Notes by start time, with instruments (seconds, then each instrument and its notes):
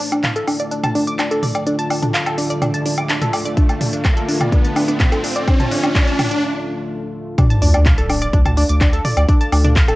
Already playing: ambient pad D3 A3 F4, riser
0.12 synth pluck D4, closed hi-hat, low woodblock
0.24 synth pluck F5, clap, closed hi-hat, mid tom
0.36 synth pluck A4, closed hi-hat
0.48 synth pluck D4, open hi-hat, low woodblock
0.60 synth pluck D5, closed hi-hat
0.71 synth pluck D4, closed hi-hat
0.84 synth pluck A5, closed hi-hat, mid tom, low woodblock
0.95 synth pluck D4, open hi-hat
1.07 synth pluck D6, closed hi-hat
1.19 synth pluck D4, clap, closed hi-hat, low woodblock
1.31 synth pluck A4, closed hi-hat
1.43 synth pluck D5, mid tom, open hi-hat
1.55 synth pluck D5, closed hi-hat, low woodblock
1.67 synth pluck D4, closed hi-hat
1.79 synth pluck A5, closed hi-hat
1.90 synth pluck D4, open hi-hat, low woodblock
2.03 synth pluck D4, closed hi-hat, mid tom
2.14 synth pluck F5, clap, closed hi-hat
2.26 synth pluck A4, closed hi-hat, low woodblock
2.38 synth pluck D4, open hi-hat
2.50 synth pluck D5, closed hi-hat
2.62 synth pluck D4, closed hi-hat, mid tom, low woodblock
2.74 synth pluck A5, closed hi-hat
2.86 synth pluck D4, open hi-hat
2.98 synth pluck D6, closed hi-hat, low woodblock
3.09 synth pluck D4, clap, closed hi-hat
3.22 synth pluck A4, closed hi-hat, mid tom
3.33 synth pluck D5, open hi-hat, low woodblock
3.45 synth pluck D5, closed hi-hat
3.57 synth pluck D4, kick, closed hi-hat
3.69 synth pluck A5, closed hi-hat, low woodblock
3.81 synth pluck D4, mid tom, open hi-hat
3.93 synth pluck D4, closed hi-hat
4.05 synth pluck F5, kick, clap, closed hi-hat, low woodblock
4.17 synth pluck A4, closed hi-hat
4.28 synth pluck D4, open hi-hat
4.41 synth pluck D5, closed hi-hat, mid tom, low woodblock
4.52 synth pluck D4, kick, closed hi-hat
4.64 synth pluck A5, closed hi-hat
4.76 synth pluck D4, open hi-hat, low woodblock
4.88 synth pluck D4, closed hi-hat
5.00 synth pluck F5, kick, clap, closed hi-hat, mid tom
5.12 synth pluck A4, closed hi-hat, low woodblock
5.24 synth pluck D4, open hi-hat
5.36 synth pluck D5, closed hi-hat
5.48 synth pluck D4, kick, closed hi-hat, low woodblock
5.60 synth pluck A5, closed hi-hat, mid tom
5.71 synth pluck D4, open hi-hat
5.84 synth pluck D4, closed hi-hat, low woodblock
5.95 synth pluck D4, kick, clap, closed hi-hat
6.07 synth pluck A5, closed hi-hat
6.19 synth pluck D4, mid tom, open hi-hat, low woodblock
6.31 synth pluck D4, closed hi-hat
7.38 synth pluck D4 D5, ambient pad D4 A4 F5, kick, closed hi-hat, sub drop, low woodblock
7.50 synth pluck A5 A6, closed hi-hat
7.62 analog synth bass D2, synth pluck D4 D5, open hi-hat
7.74 synth pluck D4 D5, closed hi-hat, low woodblock
7.86 synth pluck F5 F6, kick, clap, closed hi-hat, mid tom
7.98 analog synth bass D1, synth pluck A4 A5, closed hi-hat
8.09 synth pluck D4 D5, open hi-hat, low woodblock
8.22 synth pluck D5 D6, closed hi-hat
8.33 analog synth bass D2, synth pluck D4 D5, kick, closed hi-hat
8.45 synth pluck A5 A6, closed hi-hat, mid tom, low woodblock
8.57 synth pluck D4 D5, open hi-hat
8.69 analog synth bass D2, synth pluck D6, closed hi-hat
8.81 synth pluck D4 D5, kick, clap, closed hi-hat, low woodblock
8.93 synth pluck A4 A5, closed hi-hat
9.05 synth pluck D5 D6, mid tom, open hi-hat
9.17 analog synth bass D2, synth pluck D5 D6, closed hi-hat, low woodblock
9.29 synth pluck D4 D5, kick, closed hi-hat
9.41 synth pluck A5 A6, closed hi-hat
9.52 analog synth bass D2, synth pluck D4 D5, open hi-hat, low woodblock
9.64 synth pluck D4 D5, closed hi-hat, mid tom
9.76 synth pluck F5 F6, kick, clap, closed hi-hat
9.88 analog synth bass D1, synth pluck A4 A5, closed hi-hat, low woodblock